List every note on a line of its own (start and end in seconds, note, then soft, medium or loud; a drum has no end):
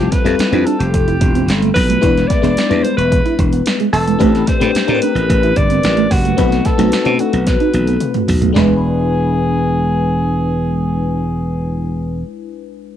0.00 0.17 G3 medium
0.00 0.17 C4 medium
0.00 0.17 E4 medium
0.00 0.18 F4 medium
0.00 0.13 G4 medium
0.00 0.18 A4 medium
0.11 0.65 B4 loud
0.11 muted clean electric guitar stroke soft
0.11 kick loud
0.11 snare soft
0.11 closed hi-hat medium
0.24 0.36 F2 loud
0.24 0.47 G3 medium
0.24 0.47 C4 medium
0.24 0.33 C4 medium
0.24 0.47 E4 medium
0.24 0.47 F4 medium
0.24 0.48 A4 medium
0.24 snare soft
0.24 closed hi-hat medium
0.39 muted slap bass stroke soft
0.39 muted clean electric guitar stroke soft
0.39 snare loud
0.39 closed hi-hat loud
0.51 0.64 F2 loud
0.51 1.40 G3 medium
0.51 1.40 C4 medium
0.51 0.61 D4 medium
0.51 1.41 E4 medium
0.51 1.41 F4 medium
0.51 1.41 A4 medium
0.51 closed hi-hat soft
0.64 0.75 D4 medium
0.64 0.67 G#4 medium
0.64 0.81 A4 medium
0.64 closed hi-hat medium
0.79 0.91 F1 medium
0.79 1.61 G4 loud
0.79 closed hi-hat medium
0.94 1.16 F1 medium
0.94 kick medium
0.94 closed hi-hat loud
1.08 1.15 E4 medium
1.08 closed hi-hat soft
1.21 1.43 E1 medium
1.21 muted clean electric guitar stroke soft
1.21 kick loud
1.21 closed hi-hat medium
1.35 1.43 C4 medium
1.35 closed hi-hat medium
1.48 1.70 G1 medium
1.48 snare loud
1.48 closed hi-hat medium
1.62 1.70 A3 medium
1.62 closed hi-hat soft
1.74 1.98 B1 medium
1.74 2.29 B4 loud
1.74 kick loud
1.74 open hi-hat medium
1.89 1.97 A3 medium
1.89 closed hi-hat medium
2.01 2.25 E1 loud
2.01 2.35 G#3 medium
2.01 2.35 B3 medium
2.01 2.35 D4 medium
2.01 2.35 E4 medium
2.01 2.11 E4 medium
2.01 2.35 B4 medium
2.01 kick loud
2.01 closed hi-hat medium
2.17 snare soft
2.17 closed hi-hat soft
2.28 2.85 D5 loud
2.28 muted clean electric guitar stroke soft
2.28 kick loud
2.28 snare soft
2.28 closed hi-hat medium
2.42 2.54 E1 loud
2.42 2.65 G#3 medium
2.42 2.65 B3 medium
2.42 2.51 B3 medium
2.42 2.65 D4 medium
2.42 2.65 E4 medium
2.42 2.65 B4 medium
2.42 snare soft
2.42 closed hi-hat medium
2.57 muted slap bass stroke soft
2.57 snare loud
2.57 closed hi-hat medium
2.69 2.82 E2 loud
2.69 2.76 G3 medium
2.69 3.58 B3 medium
2.69 3.58 D4 medium
2.69 2.79 D4 medium
2.69 3.58 E4 medium
2.69 3.59 B4 medium
2.69 closed hi-hat soft
2.75 3.61 G#3 medium
2.83 2.93 D4 medium
2.83 2.96 C5 medium
2.83 closed hi-hat medium
2.97 3.20 E1 medium
2.97 3.48 B4 loud
2.97 closed hi-hat soft
3.12 kick loud
3.12 closed hi-hat medium
3.26 3.33 E4 medium
3.26 closed hi-hat soft
3.39 3.61 E1 medium
3.39 kick loud
3.39 closed hi-hat medium
3.52 3.60 B3 medium
3.52 closed hi-hat medium
3.66 snare loud
3.66 closed hi-hat medium
3.80 3.88 G#3 medium
3.80 closed hi-hat soft
3.93 4.15 E1 loud
3.93 4.49 A4 loud
3.93 open hi-hat medium
4.07 4.15 G#3 medium
4.07 closed hi-hat medium
4.19 4.43 A1 loud
4.19 4.52 A3 medium
4.19 4.29 A3 loud
4.19 4.53 C4 medium
4.19 4.53 D4 medium
4.19 4.53 G4 medium
4.19 4.53 B4 medium
4.19 kick loud
4.19 closed hi-hat medium
4.35 snare soft
4.35 closed hi-hat soft
4.47 5.04 C5 medium
4.47 muted clean electric guitar stroke soft
4.47 kick loud
4.47 snare soft
4.47 closed hi-hat medium
4.60 4.72 A2 loud
4.60 4.82 A3 medium
4.60 4.83 C4 medium
4.60 4.69 C4 medium
4.60 4.83 D4 medium
4.60 4.83 G4 medium
4.60 4.83 B4 medium
4.60 snare soft
4.60 closed hi-hat medium
4.75 muted slap bass stroke soft
4.75 muted clean electric guitar stroke soft
4.75 snare loud
4.75 closed hi-hat loud
4.87 5.00 A2 loud
4.87 5.76 A3 medium
4.87 5.76 C4 medium
4.87 5.76 D4 medium
4.87 4.97 D4 medium
4.87 5.76 G4 medium
4.87 4.94 A#4 medium
4.87 closed hi-hat soft
4.94 5.79 B4 medium
5.02 5.11 D4 medium
5.02 5.58 B4 loud
5.02 closed hi-hat medium
5.15 5.26 A1 medium
5.15 closed hi-hat soft
5.29 5.52 A1 loud
5.29 kick loud
5.29 closed hi-hat loud
5.43 5.51 E4 medium
5.43 closed hi-hat soft
5.56 5.79 G1 loud
5.56 6.13 D5 loud
5.56 kick loud
5.56 closed hi-hat medium
5.70 5.78 C4 medium
5.70 closed hi-hat medium
5.83 6.06 A1 medium
5.83 snare loud
5.83 closed hi-hat medium
5.97 6.05 A3 medium
5.97 closed hi-hat soft
6.11 6.33 F#1 loud
6.11 6.67 F#4 loud
6.11 muted clean electric guitar stroke medium
6.11 kick loud
6.11 open hi-hat medium
6.25 6.33 A3 medium
6.25 closed hi-hat medium
6.37 6.60 B1 loud
6.37 6.70 A3 medium
6.37 6.46 B3 medium
6.37 6.71 C4 medium
6.37 6.71 D#4 medium
6.37 6.71 F#4 medium
6.37 6.71 B4 medium
6.37 kick loud
6.37 closed hi-hat loud
6.52 snare soft
6.52 closed hi-hat soft
6.65 7.21 A4 loud
6.65 muted clean electric guitar stroke soft
6.65 kick loud
6.65 snare soft
6.65 closed hi-hat medium
6.78 6.90 B1 medium
6.78 7.00 A3 medium
6.78 6.87 A3 medium
6.78 7.00 C4 medium
6.78 7.00 D#4 medium
6.78 7.01 F#4 medium
6.78 7.01 A4 medium
6.78 snare soft
6.78 closed hi-hat medium
6.92 muted slap bass stroke soft
6.92 muted clean electric guitar stroke soft
6.92 snare loud
6.92 closed hi-hat loud
7.05 7.17 B2 loud
7.05 7.94 A3 medium
7.05 7.94 C4 medium
7.05 7.15 D4 medium
7.05 7.94 D#4 medium
7.05 7.94 F#4 medium
7.05 7.94 B4 medium
7.05 closed hi-hat soft
7.19 7.28 D4 medium
7.19 7.47 F#4 medium
7.19 closed hi-hat medium
7.33 7.56 B1 medium
7.33 closed hi-hat soft
7.47 8.25 B4 medium
7.47 kick loud
7.47 snare medium
7.47 closed hi-hat loud
7.60 7.69 D#4 medium
7.60 closed hi-hat soft
7.74 7.96 B1 medium
7.74 muted clean electric guitar stroke soft
7.74 closed hi-hat medium
7.74 high tom medium
7.87 7.96 B3 medium
7.87 closed hi-hat medium
8.00 closed hi-hat medium
8.00 mid tom medium
8.14 8.23 A3 medium
8.14 closed hi-hat soft
8.14 mid tom medium
8.28 8.51 B1 loud
8.28 muted clean electric guitar stroke medium
8.28 floor tom loud
8.28 open hi-hat medium
8.42 8.50 A3 medium
8.42 closed hi-hat medium
8.42 floor tom medium
8.53 12.22 E1 loud
8.53 12.19 G#3 medium
8.53 8.72 G#3 loud
8.53 12.21 D4 medium
8.53 12.23 E4 medium
8.53 12.23 G#4 loud
8.53 snare loud
8.53 floor tom loud
8.58 12.24 B4 medium